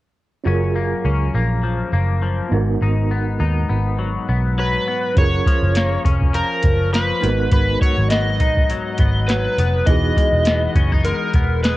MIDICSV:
0, 0, Header, 1, 6, 480
1, 0, Start_track
1, 0, Key_signature, 6, "major"
1, 0, Tempo, 588235
1, 373, Time_signature, 4, 2, 24, 8
1, 9604, End_track
2, 0, Start_track
2, 0, Title_t, "Electric slide guitar"
2, 0, Program_c, 0, 29
2, 3750, Note_on_c, 0, 71, 73
2, 4226, Note_off_c, 0, 71, 0
2, 4230, Note_on_c, 0, 73, 97
2, 4911, Note_off_c, 0, 73, 0
2, 5179, Note_on_c, 0, 70, 79
2, 5653, Note_off_c, 0, 70, 0
2, 5657, Note_on_c, 0, 71, 85
2, 6131, Note_off_c, 0, 71, 0
2, 6141, Note_on_c, 0, 71, 99
2, 6375, Note_off_c, 0, 71, 0
2, 6378, Note_on_c, 0, 73, 83
2, 6611, Note_off_c, 0, 73, 0
2, 6614, Note_on_c, 0, 75, 97
2, 7572, Note_on_c, 0, 71, 89
2, 7605, Note_off_c, 0, 75, 0
2, 8050, Note_on_c, 0, 75, 100
2, 8069, Note_off_c, 0, 71, 0
2, 9013, Note_on_c, 0, 70, 78
2, 9042, Note_off_c, 0, 75, 0
2, 9462, Note_off_c, 0, 70, 0
2, 9493, Note_on_c, 0, 71, 85
2, 9604, Note_off_c, 0, 71, 0
2, 9604, End_track
3, 0, Start_track
3, 0, Title_t, "Reed electric piano"
3, 0, Program_c, 1, 4
3, 355, Note_on_c, 1, 61, 60
3, 368, Note_on_c, 1, 65, 57
3, 382, Note_on_c, 1, 68, 55
3, 398, Note_on_c, 1, 70, 61
3, 537, Control_c, 1, 64, 127
3, 2014, Note_off_c, 1, 61, 0
3, 2020, Note_off_c, 1, 65, 0
3, 2028, Note_off_c, 1, 68, 0
3, 2033, Note_on_c, 1, 59, 61
3, 2035, Note_off_c, 1, 70, 0
3, 2051, Note_on_c, 1, 63, 63
3, 2062, Note_on_c, 1, 66, 57
3, 2064, Control_c, 1, 64, 0
3, 2076, Note_on_c, 1, 70, 71
3, 2215, Control_c, 1, 64, 127
3, 3934, Note_off_c, 1, 59, 0
3, 3943, Note_off_c, 1, 63, 0
3, 3948, Note_off_c, 1, 66, 0
3, 3955, Note_off_c, 1, 70, 0
3, 4200, Note_on_c, 1, 61, 59
3, 4216, Note_on_c, 1, 65, 48
3, 4228, Control_c, 1, 64, 0
3, 4230, Note_on_c, 1, 68, 52
3, 4242, Note_on_c, 1, 70, 64
3, 4365, Control_c, 1, 64, 127
3, 5857, Note_off_c, 1, 61, 0
3, 5864, Note_off_c, 1, 65, 0
3, 5871, Note_off_c, 1, 68, 0
3, 5874, Note_on_c, 1, 58, 43
3, 5878, Note_off_c, 1, 70, 0
3, 5890, Note_on_c, 1, 63, 50
3, 5903, Note_on_c, 1, 66, 55
3, 5910, Control_c, 1, 64, 0
3, 5919, Note_on_c, 1, 70, 61
3, 5928, Note_on_c, 1, 59, 58
3, 5944, Note_off_c, 1, 58, 0
3, 6033, Control_c, 1, 64, 127
3, 7781, Note_off_c, 1, 63, 0
3, 7787, Note_off_c, 1, 66, 0
3, 7795, Note_off_c, 1, 70, 0
3, 7800, Note_off_c, 1, 59, 0
3, 8043, Note_on_c, 1, 59, 58
3, 8057, Note_on_c, 1, 63, 48
3, 8069, Control_c, 1, 64, 0
3, 8071, Note_on_c, 1, 66, 50
3, 8086, Note_on_c, 1, 68, 67
3, 8228, Control_c, 1, 64, 127
3, 9604, Note_off_c, 1, 59, 0
3, 9604, Note_off_c, 1, 63, 0
3, 9604, Note_off_c, 1, 66, 0
3, 9604, Note_off_c, 1, 68, 0
3, 9604, End_track
4, 0, Start_track
4, 0, Title_t, "Clean electric guitar"
4, 0, Program_c, 2, 27
4, 374, Note_on_c, 2, 42, 65
4, 382, Note_on_c, 2, 61, 50
4, 617, Note_on_c, 2, 58, 52
4, 847, Note_off_c, 2, 61, 0
4, 857, Note_on_c, 2, 61, 53
4, 1091, Note_off_c, 2, 58, 0
4, 1101, Note_on_c, 2, 58, 52
4, 1334, Note_on_c, 2, 53, 54
4, 1567, Note_off_c, 2, 58, 0
4, 1576, Note_on_c, 2, 58, 51
4, 1805, Note_off_c, 2, 53, 0
4, 1815, Note_on_c, 2, 53, 57
4, 2056, Note_off_c, 2, 42, 0
4, 2059, Note_on_c, 2, 44, 70
4, 2109, Note_off_c, 2, 53, 0
4, 2109, Note_off_c, 2, 58, 0
4, 2110, Note_off_c, 2, 61, 0
4, 2290, Note_off_c, 2, 44, 0
4, 2300, Note_on_c, 2, 44, 65
4, 2305, Note_on_c, 2, 63, 52
4, 2540, Note_on_c, 2, 59, 54
4, 2765, Note_off_c, 2, 63, 0
4, 2775, Note_on_c, 2, 63, 61
4, 3005, Note_off_c, 2, 59, 0
4, 3014, Note_on_c, 2, 59, 54
4, 3253, Note_on_c, 2, 54, 52
4, 3489, Note_off_c, 2, 59, 0
4, 3499, Note_on_c, 2, 59, 52
4, 3736, Note_off_c, 2, 54, 0
4, 3739, Note_on_c, 2, 54, 57
4, 3970, Note_off_c, 2, 59, 0
4, 3980, Note_on_c, 2, 59, 59
4, 4220, Note_off_c, 2, 44, 0
4, 4270, Note_off_c, 2, 63, 0
4, 4272, Note_off_c, 2, 59, 0
4, 4462, Note_off_c, 2, 54, 0
4, 4465, Note_on_c, 2, 53, 55
4, 4703, Note_on_c, 2, 58, 53
4, 4933, Note_on_c, 2, 61, 63
4, 5164, Note_off_c, 2, 53, 0
4, 5174, Note_on_c, 2, 53, 57
4, 5421, Note_off_c, 2, 58, 0
4, 5642, Note_off_c, 2, 53, 0
4, 5652, Note_on_c, 2, 53, 58
4, 5893, Note_on_c, 2, 44, 76
4, 5948, Note_off_c, 2, 53, 0
4, 5948, Note_off_c, 2, 61, 0
4, 6132, Note_off_c, 2, 44, 0
4, 6142, Note_on_c, 2, 44, 66
4, 6380, Note_on_c, 2, 54, 55
4, 6618, Note_on_c, 2, 59, 54
4, 6858, Note_on_c, 2, 63, 65
4, 7093, Note_off_c, 2, 54, 0
4, 7102, Note_on_c, 2, 54, 58
4, 7339, Note_off_c, 2, 59, 0
4, 7342, Note_on_c, 2, 59, 53
4, 7573, Note_off_c, 2, 54, 0
4, 7583, Note_on_c, 2, 54, 64
4, 7824, Note_off_c, 2, 59, 0
4, 7827, Note_on_c, 2, 59, 63
4, 8059, Note_off_c, 2, 44, 0
4, 8060, Note_on_c, 2, 52, 65
4, 8113, Note_off_c, 2, 54, 0
4, 8297, Note_on_c, 2, 56, 60
4, 8538, Note_off_c, 2, 59, 0
4, 8542, Note_on_c, 2, 59, 54
4, 8776, Note_off_c, 2, 63, 0
4, 8779, Note_on_c, 2, 61, 69
4, 8911, Note_off_c, 2, 61, 0
4, 8911, Note_on_c, 2, 63, 54
4, 9020, Note_off_c, 2, 56, 0
4, 9023, Note_on_c, 2, 56, 56
4, 9259, Note_off_c, 2, 59, 0
4, 9263, Note_on_c, 2, 59, 53
4, 9500, Note_off_c, 2, 56, 0
4, 9503, Note_on_c, 2, 56, 58
4, 9604, Note_off_c, 2, 52, 0
4, 9604, Note_off_c, 2, 56, 0
4, 9604, Note_off_c, 2, 59, 0
4, 9604, Note_off_c, 2, 63, 0
4, 9604, End_track
5, 0, Start_track
5, 0, Title_t, "Picked electric bass"
5, 0, Program_c, 3, 34
5, 374, Note_on_c, 3, 30, 72
5, 758, Note_off_c, 3, 30, 0
5, 855, Note_on_c, 3, 37, 78
5, 1047, Note_off_c, 3, 37, 0
5, 1097, Note_on_c, 3, 34, 81
5, 1481, Note_off_c, 3, 34, 0
5, 1574, Note_on_c, 3, 30, 88
5, 1959, Note_off_c, 3, 30, 0
5, 2053, Note_on_c, 3, 32, 89
5, 2247, Note_off_c, 3, 32, 0
5, 2297, Note_on_c, 3, 32, 87
5, 2777, Note_on_c, 3, 39, 91
5, 2789, Note_off_c, 3, 32, 0
5, 2969, Note_off_c, 3, 39, 0
5, 3018, Note_on_c, 3, 32, 85
5, 3402, Note_off_c, 3, 32, 0
5, 3500, Note_on_c, 3, 35, 90
5, 3883, Note_off_c, 3, 35, 0
5, 4218, Note_on_c, 3, 30, 80
5, 4410, Note_off_c, 3, 30, 0
5, 4589, Note_on_c, 3, 30, 82
5, 4868, Note_off_c, 3, 30, 0
5, 4936, Note_on_c, 3, 29, 77
5, 5235, Note_off_c, 3, 29, 0
5, 5416, Note_on_c, 3, 30, 88
5, 5801, Note_off_c, 3, 30, 0
5, 5901, Note_on_c, 3, 32, 86
5, 6092, Note_off_c, 3, 32, 0
5, 6134, Note_on_c, 3, 32, 88
5, 6328, Note_off_c, 3, 32, 0
5, 6509, Note_on_c, 3, 32, 74
5, 6857, Note_off_c, 3, 32, 0
5, 6857, Note_on_c, 3, 34, 83
5, 7155, Note_off_c, 3, 34, 0
5, 7337, Note_on_c, 3, 32, 98
5, 7721, Note_off_c, 3, 32, 0
5, 7819, Note_on_c, 3, 29, 87
5, 8010, Note_off_c, 3, 29, 0
5, 8055, Note_on_c, 3, 28, 85
5, 8248, Note_off_c, 3, 28, 0
5, 8426, Note_on_c, 3, 28, 93
5, 8705, Note_off_c, 3, 28, 0
5, 8776, Note_on_c, 3, 30, 77
5, 9073, Note_off_c, 3, 30, 0
5, 9254, Note_on_c, 3, 28, 84
5, 9604, Note_off_c, 3, 28, 0
5, 9604, End_track
6, 0, Start_track
6, 0, Title_t, "Drums"
6, 4217, Note_on_c, 9, 36, 96
6, 4218, Note_on_c, 9, 42, 70
6, 4299, Note_off_c, 9, 36, 0
6, 4299, Note_off_c, 9, 42, 0
6, 4458, Note_on_c, 9, 36, 88
6, 4468, Note_on_c, 9, 42, 76
6, 4539, Note_off_c, 9, 36, 0
6, 4550, Note_off_c, 9, 42, 0
6, 4693, Note_on_c, 9, 42, 89
6, 4708, Note_on_c, 9, 38, 92
6, 4774, Note_off_c, 9, 42, 0
6, 4790, Note_off_c, 9, 38, 0
6, 4938, Note_on_c, 9, 36, 82
6, 4942, Note_on_c, 9, 42, 71
6, 5019, Note_off_c, 9, 36, 0
6, 5023, Note_off_c, 9, 42, 0
6, 5074, Note_on_c, 9, 36, 76
6, 5155, Note_off_c, 9, 36, 0
6, 5175, Note_on_c, 9, 42, 77
6, 5256, Note_off_c, 9, 42, 0
6, 5406, Note_on_c, 9, 42, 66
6, 5415, Note_on_c, 9, 36, 83
6, 5487, Note_off_c, 9, 42, 0
6, 5497, Note_off_c, 9, 36, 0
6, 5663, Note_on_c, 9, 42, 74
6, 5672, Note_on_c, 9, 38, 87
6, 5745, Note_off_c, 9, 42, 0
6, 5753, Note_off_c, 9, 38, 0
6, 5903, Note_on_c, 9, 42, 57
6, 5985, Note_off_c, 9, 42, 0
6, 6132, Note_on_c, 9, 42, 76
6, 6135, Note_on_c, 9, 36, 96
6, 6214, Note_off_c, 9, 42, 0
6, 6216, Note_off_c, 9, 36, 0
6, 6376, Note_on_c, 9, 36, 90
6, 6389, Note_on_c, 9, 42, 77
6, 6457, Note_off_c, 9, 36, 0
6, 6470, Note_off_c, 9, 42, 0
6, 6611, Note_on_c, 9, 42, 91
6, 6626, Note_on_c, 9, 38, 102
6, 6692, Note_off_c, 9, 42, 0
6, 6708, Note_off_c, 9, 38, 0
6, 6853, Note_on_c, 9, 42, 67
6, 6855, Note_on_c, 9, 36, 81
6, 6935, Note_off_c, 9, 42, 0
6, 6937, Note_off_c, 9, 36, 0
6, 6992, Note_on_c, 9, 36, 88
6, 7074, Note_off_c, 9, 36, 0
6, 7096, Note_on_c, 9, 42, 78
6, 7177, Note_off_c, 9, 42, 0
6, 7327, Note_on_c, 9, 42, 66
6, 7335, Note_on_c, 9, 36, 87
6, 7408, Note_off_c, 9, 42, 0
6, 7416, Note_off_c, 9, 36, 0
6, 7580, Note_on_c, 9, 42, 77
6, 7589, Note_on_c, 9, 38, 94
6, 7662, Note_off_c, 9, 42, 0
6, 7670, Note_off_c, 9, 38, 0
6, 7822, Note_on_c, 9, 42, 68
6, 7903, Note_off_c, 9, 42, 0
6, 8053, Note_on_c, 9, 42, 79
6, 8055, Note_on_c, 9, 36, 96
6, 8135, Note_off_c, 9, 42, 0
6, 8137, Note_off_c, 9, 36, 0
6, 8296, Note_on_c, 9, 36, 89
6, 8305, Note_on_c, 9, 42, 80
6, 8378, Note_off_c, 9, 36, 0
6, 8386, Note_off_c, 9, 42, 0
6, 8529, Note_on_c, 9, 42, 102
6, 8545, Note_on_c, 9, 38, 101
6, 8611, Note_off_c, 9, 42, 0
6, 8626, Note_off_c, 9, 38, 0
6, 8775, Note_on_c, 9, 36, 87
6, 8777, Note_on_c, 9, 42, 67
6, 8856, Note_off_c, 9, 36, 0
6, 8858, Note_off_c, 9, 42, 0
6, 8912, Note_on_c, 9, 36, 82
6, 8994, Note_off_c, 9, 36, 0
6, 9014, Note_on_c, 9, 42, 79
6, 9095, Note_off_c, 9, 42, 0
6, 9250, Note_on_c, 9, 42, 59
6, 9254, Note_on_c, 9, 36, 81
6, 9331, Note_off_c, 9, 42, 0
6, 9336, Note_off_c, 9, 36, 0
6, 9498, Note_on_c, 9, 42, 73
6, 9507, Note_on_c, 9, 38, 94
6, 9580, Note_off_c, 9, 42, 0
6, 9589, Note_off_c, 9, 38, 0
6, 9604, End_track
0, 0, End_of_file